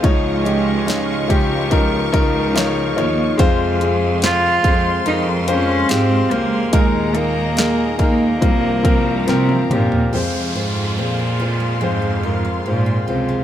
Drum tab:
HH |x-x-x-x-x-x-x-x-|x-x-x-x-x-x-x-x-|x-x-x-x-x-x-x-x-|----------------|
SD |----o-------o---|----o-------o---|----o-------o---|----------------|
T1 |----------------|----------------|-------------o--|----------------|
T2 |----------------|----------------|--------------o-|----------------|
FT |----------------|----------------|---------------o|----------------|
BD |o-----o-o-o-----|o-----o---------|o-----o-o-o-----|----------------|